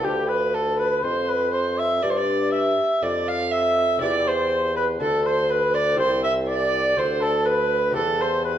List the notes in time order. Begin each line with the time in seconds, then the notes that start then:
0.00 B3 F4 G4
0.04 D2 G4
0.29 B4
0.54 A4
0.79 B4
1.03 F2 C5
1.28 B4
1.53 C5
1.78 E5
2.02 G2 D5
2.09 C5
2.17 D5
2.52 E5
3.02 F2 D5
3.28 F5
3.51 E5
3.98 C4 E4 G4 D5
4.02 E2 D5
4.27 C5
4.76 B4
5.00 D2 A4
5.25 C5
5.50 B4
5.74 D5
5.94 C4 E4 G4
5.98 C2 C5
6.23 E5
6.47 D5
6.96 D2 C5
7.21 A4
7.45 B4
7.91 C4 E4 G4
7.95 E2 A4
8.21 C5
8.45 B4